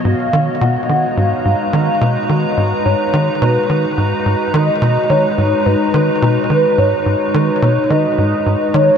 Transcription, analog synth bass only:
\new Staff \with { instrumentName = "Analog synth bass" } { \clef bass \time 4/4 \key gis \dorian \tempo 4 = 107 gis,8 dis8 b,8 dis8 gis,8 gis,8 dis8 b,8 | dis8 gis,8 gis,8 dis8 b,8 dis8 gis,8 gis,8 | dis8 b,8 dis8 gis,8 gis,8 dis8 b,8 dis8 | gis,8 gis,8 dis8 b,8 dis8 gis,8 gis,8 dis8 | }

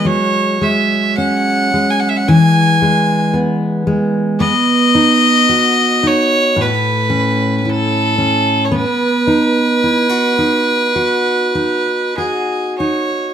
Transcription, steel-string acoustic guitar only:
\new Staff \with { instrumentName = "Steel-string acoustic guitar" } { \time 4/4 \key b \mixolydian \tempo 4 = 55 fis8 gis8 cis'8 gis8 e8 gis8 b8 gis8 | b8 dis'8 fis'8 dis'8 a,8 cis'8 e'8 cis'8 | b8 dis'8 e'16 fis'16 dis'8 fis'8 dis'8 fis'8 dis'8 | }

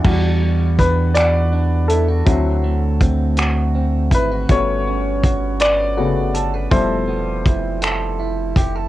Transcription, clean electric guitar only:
\new Staff \with { instrumentName = "Clean electric guitar" } { \time 6/8 \key g \lydian \tempo 4. = 54 <e fis'>8 g8 d'8 fis'8 d'8 e'16 fis'16 | <d fis'>8 a8 c'8 fis'8 c'8 e'16 fis'16 | <g b'>8 cis'8 fis'8 b'8 fis'8 a'16 b'16 | <f a'>8 b8 e'8 a'8 e'8 g'16 a'16 | }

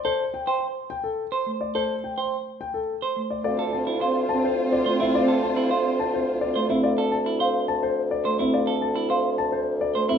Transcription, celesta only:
\new Staff \with { instrumentName = "Celesta" } { \time 3/4 \key c \mixolydian \tempo 4 = 106 r8. g''16 r2 | r8. g''16 r2 | \key d \minor f''16 r8. f''16 r4. r16 | f''16 r8. f''16 r4. r16 |
f''16 r8. f''16 r4. r16 | f''16 r8. f''16 r4. r16 | }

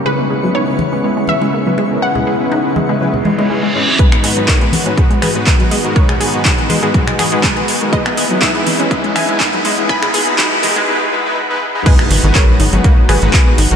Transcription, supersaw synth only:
\new Staff \with { instrumentName = "Supersaw synth" } { \time 4/4 \key gis \minor \tempo 4 = 122 <cis gis b cis' e' b'>8 <cis gis b cis' e' b'>16 <cis gis b cis' e' b'>8 <cis gis b cis' e' b'>16 r16 <cis gis b cis' e' b'>16 <cis gis b cis' e' b'>16 r16 <cis gis b cis' e' b'>16 <cis gis b cis' e' b'>16 r16 <cis gis b cis' e' b'>16 r16 <cis gis b cis' e' ais'>16 | <cis gis b cis' e' b'>8 <cis gis b cis' e' b'>16 <cis gis b cis' e' b'>8 <cis gis b cis' e' b'>16 r16 <cis gis b cis' e' b'>16 <cis gis b cis' e' b'>16 r8 <cis gis b cis' e' b'>16 <cis gis b cis' e' b'>16 r16 <gis, gis b cis' e' cis''>16 r16 | <gis, gis b dis' fis' b'>8 <gis, gis b dis' fis' b'>16 <gis, gis b dis' fis' b'>8 <gis, gis b dis' fis' b'>16 r16 <gis, gis b dis' fis' b'>16 <gis, gis b dis' fis' b'>16 r16 <gis, gis b dis' fis' b'>16 <gis, gis b dis' fis' b'>16 r16 <gis, gis b dis' fis' b'>16 r16 <gis, gis b dis' fis' ais'>16 | <gis, gis b dis' fis'>8 <gis, gis b dis' fis' b'>16 <gis, gis b dis' fis' b'>8 <gis, gis b dis' fis' b'>16 r16 <gis, gis b dis' fis' b'>16 <gis, gis b dis' fis' b'>16 r16 <gis, gis b dis' fis' b'>16 <gis, gis b dis' fis' b'>16 r16 <gis, gis b dis' fis' b'>16 r16 <gis b dis' fis' ais'>16 |
<b dis' e' b'>8 <gis b dis' e' b'>16 <gis b dis' e' b'>8 <gis b dis' e' b'>16 r16 <gis b dis' e' b'>16 <gis b dis' e' b'>16 r16 <gis b dis' e' b'>16 <gis b dis' e' b'>16 r16 <gis b dis' e' b'>16 r16 <gis b dis' e' gis'>16 | <b dis' e' b'>8 <gis b dis' e' b'>16 <gis b dis' e' b'>8 <gis b dis' e' b'>16 r16 <gis b dis' e' b'>16 <gis b dis' e' b'>16 r16 <gis b dis' e' b'>16 <gis b dis' e' b'>16 r16 <gis b dis' e' b'>16 r16 <gis, gis b dis' e' gis'>16 | <gis, gis b dis' fis' b'>8 <gis, gis b dis' fis' b'>16 <gis, gis b dis' fis' b'>8 <gis, gis b dis' fis' b'>16 r16 <gis, gis b dis' fis' b'>16 <gis, gis b dis' fis' b'>16 r16 <gis, gis b dis' fis' b'>16 <gis, gis b dis' fis' b'>16 r16 <gis, gis b dis' fis' b'>16 r16 <gis, gis b dis' fis' ais'>16 | }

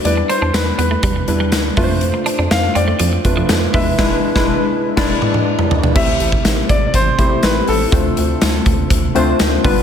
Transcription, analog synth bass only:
\new Staff \with { instrumentName = "Analog synth bass" } { \clef bass \time 4/4 \key a \minor \tempo 4 = 122 e,8 r16 e,16 e,8 e,8 e,8 e,8 d,8 f,8~ | f,8 r16 f,16 f,8 f,8 f,8 f,8 f,8 e,8 | e,,8 r16 e,,8 r8. e,,8 r4. | a,,8 a,,8 a,,8 a,,8 a,,8 a,,8 a,,8 a,,8 |
d,8 d,8 d,8 d,8 d,8 d,8 d,8 g,,8 | }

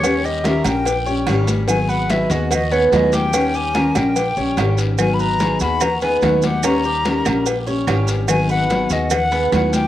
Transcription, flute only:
\new Staff \with { instrumentName = "Flute" } { \time 4/4 \key gis \minor \tempo 4 = 145 cis''8 dis''8 e''8 g''2 r8 | gis''8 fis''8 e''8 dis''8 dis''8 cis''8 dis''8 g''8~ | g''8 gis''4 g''2 r8 | \tuplet 3/2 { gis''8 b''16 ais''8.~ } ais''8 b''8 ais''8 gis''8 fis''8 fis''8 |
ais''2 r2 | gis''8 fis''4 dis''8 fis''4 fis''8 g''8 | }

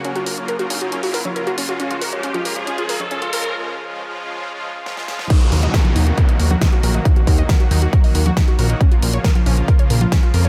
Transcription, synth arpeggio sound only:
\new Staff \with { instrumentName = "Synth arpeggio sound" } { \time 4/4 \key ees \minor \tempo 4 = 137 des'16 ges'16 bes'16 des''16 bes'16 ges'16 des'16 ges'16 des'16 ges'16 bes'16 des''16 bes'16 ges'16 des'16 ges'16 | des'16 f'16 bes'16 des''16 des'16 f'16 bes'16 des''16 des'16 f'16 bes'16 des''16 des'16 f'16 bes'16 des''16 | r1 | ees'16 ges'16 bes'16 ees''16 bes'16 ges'16 ees'16 ges'16 bes'16 ees''16 bes'16 ges'16 ees'16 ges'16 bes'16 ees''16 |
ees'16 ges'16 bes'16 ees''16 bes'16 ges'16 ees'16 ges'16 bes'16 ees''16 bes'16 ges'16 ees'16 ges'16 bes'16 ees''16 | des'16 f'16 bes'16 des''16 bes'16 f'16 des'16 f'16 bes'16 des''16 bes'16 f'16 des'16 f'16 bes'16 des''16 | }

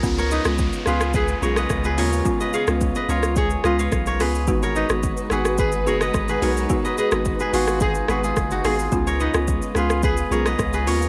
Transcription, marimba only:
\new Staff \with { instrumentName = "Marimba" } { \time 4/4 \key cis \mixolydian \tempo 4 = 108 <gis b cis' eis'>16 r8 <gis b cis' eis'>8. <gis b cis' eis'>8 r8 <gis b cis' eis'>16 r8. <gis b cis' eis'>16 r16 | <gis b cis' eis'>16 r8 <gis b cis' eis'>8. <gis b cis' eis'>8 r8 <gis b cis' eis'>16 r8. <gis b cis' eis'>16 r16 | <gis b dis' fis'>16 r8 <gis b dis' fis'>8. <gis b dis' fis'>8 r8 <gis b dis' fis'>16 r8. <gis b dis' fis'>16 r16 | <gis b dis' fis'>16 r8 <gis b dis' fis'>8. <gis b dis' fis'>8 r8 <gis b dis' fis'>16 r8. <gis b dis' fis'>16 r16 |
<gis b cis' eis'>16 r8 <gis b cis' eis'>8. <gis b cis' eis'>8 r8 <gis b cis' eis'>16 r8. <gis b cis' eis'>16 r16 | }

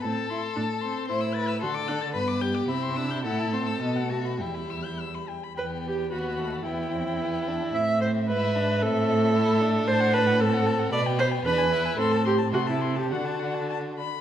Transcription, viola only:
\new Staff \with { instrumentName = "Viola" } { \time 2/4 \key e \minor \tempo 4 = 112 c'8 e'8 d'8 c'8 | e'4 fis'8 d'8 | b4 c'8 d'8 | e'8 c'8 b8 a8 |
g4. r8 | b'8 g'8 fis'4 | e'2 | e''8 c''8 b'4 |
a'2 | \key d \mixolydian c''8 b'8 a'4 | d''8 c''8 b'4 | a'8 g'8 fis'16 e'8 g'16 |
fis'4. r8 | }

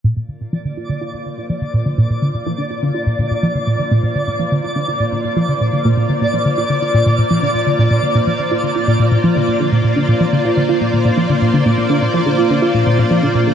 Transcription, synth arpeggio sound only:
\new Staff \with { instrumentName = "Synth arpeggio sound" } { \clef bass \time 4/4 \key bes \major \tempo 4 = 124 bes,16 bes,16 d16 bes,16 f16 d16 f'16 d16 f'16 bes,16 bes,16 bes,16 f16 d16 bes,16 d16 | bes,16 bes,16 d16 bes,16 f16 d16 f'16 d16 f'16 bes,16 bes,16 bes,16 f16 d16 bes,16 d16 | bes,16 bes,16 d16 bes,16 f16 d16 f'16 d16 f'16 bes,16 bes,16 bes,16 f16 d16 bes,16 d16 | bes,16 bes,16 d16 bes,16 f16 d16 f'16 d16 f'16 bes,16 bes,16 bes,16 f16 d16 bes,16 d16 |
bes,16 bes,16 d16 bes,16 f16 d16 f'16 d16 f'16 bes,16 bes,16 bes,16 f16 d16 bes,16 d16 | bes,16 bes,16 d16 bes,16 f16 d16 f'16 d16 f'16 bes,16 bes,16 bes,16 f16 d16 bes,16 d16 | bes,16 bes,16 d16 bes,16 f16 d16 f'16 d16 f'16 bes,16 bes,16 bes,16 f16 d16 bes,16 d16 | }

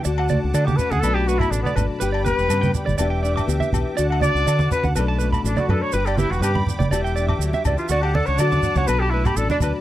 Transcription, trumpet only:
\new Staff \with { instrumentName = "Trumpet" } { \time 4/4 \key d \major \tempo 4 = 122 r4 d'16 g'16 b'16 gis'16 a'16 g'16 fis'16 e'16 d'16 b16 r8 | r8 b'4 g'8 r2 | r8 d''4 b'8 r4 d'16 fis'16 a'16 cis''16 | b'16 g'16 e'16 fis'16 g'8 r2 r16 f'16 |
fis'16 g'16 a'16 cis''16 d''8. cis''16 b'16 g'16 e'16 g'16 a'16 d'16 r8 | }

